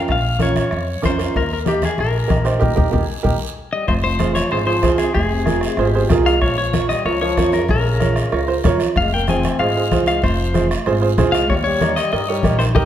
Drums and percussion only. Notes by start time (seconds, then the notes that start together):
0.08 bombo low, bombo rim, long guiro
0.39 bombo rim, high conga, short guiro
0.55 bombo rim, high conga, short guiro
0.71 bombo rim, long guiro
1.03 bombo low, bombo rim, high conga, short guiro
1.19 bombo rim, short guiro
1.34 bombo low, bombo rim, long guiro
1.66 bombo rim, high conga, short guiro
1.82 bombo rim, high conga, short guiro
1.98 bombo rim, long guiro
2.29 bombo low, bombo rim, high conga, short guiro
2.45 bombo rim, short guiro
2.61 bombo low, low conga, long guiro
2.77 bombo low, low conga, long guiro
2.93 bombo low, low conga, long guiro
3.24 bombo low, low conga, long guiro
3.88 bombo low, bombo rim, long guiro
4.19 bombo rim, high conga, short guiro
4.35 bombo rim, high conga, short guiro
4.51 bombo rim, long guiro
4.83 bombo low, bombo rim, high conga, short guiro
4.98 bombo rim, short guiro
5.14 bombo low, bombo rim, long guiro
5.46 bombo rim, high conga, short guiro
5.61 bombo rim, short guiro
5.77 bombo rim, long guiro
6.10 bombo low, bombo rim, high conga, low conga, short guiro
6.26 bombo rim, short guiro
6.41 bombo low, bombo rim, long guiro
6.73 bombo rim, high conga, short guiro
6.90 bombo rim, short guiro
7.06 bombo rim, long guiro
7.37 bombo low, bombo rim, high conga, short guiro
7.52 bombo rim, short guiro
7.68 bombo low, bombo rim, long guiro
8.00 bombo rim, high conga, short guiro
8.16 bombo rim, short guiro
8.32 bombo rim, long guiro
8.64 bombo low, bombo rim, high conga, low conga, short guiro
8.80 bombo rim, short guiro
8.96 bombo low, bombo rim, long guiro
9.27 bombo rim, high conga, short guiro
9.43 bombo rim, high conga, short guiro
9.59 bombo rim, long guiro
9.91 bombo low, bombo rim, high conga, short guiro
10.06 bombo rim, short guiro
10.22 bombo low, bombo rim, long guiro
10.54 bombo rim, high conga, short guiro
10.71 bombo rim, short guiro
10.86 bombo rim, long guiro
11.18 bombo low, bombo rim, high conga, low conga, short guiro
11.34 bombo rim, short guiro
11.50 bombo low, bombo rim, long guiro
11.81 bombo rim, high conga, short guiro
11.97 bombo rim, short guiro
12.12 bombo rim, long guiro
12.43 bombo low, bombo rim, high conga, short guiro
12.60 bombo rim, short guiro
12.76 bombo low, high conga, long guiro